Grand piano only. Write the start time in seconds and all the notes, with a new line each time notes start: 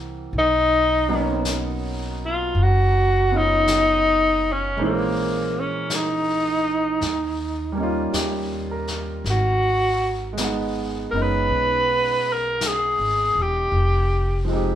Already playing: E3 G3 A#3 C4 F#4
1.09 F#3 A#3 B3 C#4 D#4
3.31 B3 C#4 D#4 F4
4.77 G#3 A#3 C5
4.81 E3 C#4
7.72 G3 A#3
7.77 C#4 D#4
7.83 F4
8.13 G4
8.71 A#4
10.33 G#3
10.39 B3 D#4
10.44 F#5
11.14 G#3 B3 C#4 D#4
14.45 F3 G#3
14.50 C4 D#4
14.56 G4